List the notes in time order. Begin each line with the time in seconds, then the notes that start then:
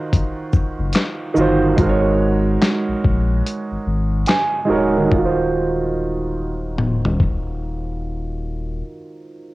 Already playing: D#3 D#4 F4 F#4 C5
0.13 kick, closed hi-hat
0.53 kick, shaker
0.79 F#1
0.93 snare, clap, closed hi-hat
1.34 G1 D#3 D#4 F4, shaker
1.39 F#4 C5
1.76 G#1 G#3 D#4 F#4, kick, closed hi-hat
1.81 A#4 C5
1.89 C#5
2.62 snare, clap, closed hi-hat
2.88 A#1
3.04 A#1, kick
3.46 closed hi-hat
3.72 G#1
3.87 G#1
4.26 G#5, snare, clap, closed hi-hat
4.65 G#3 D#4 F#4 C#5
4.70 D1 A#4 C#5
4.97 D#3
5.04 D#4
5.12 D#1 F4, kick
5.18 F#4
5.25 C5
6.78 mid tom
7.05 floor tom
7.20 kick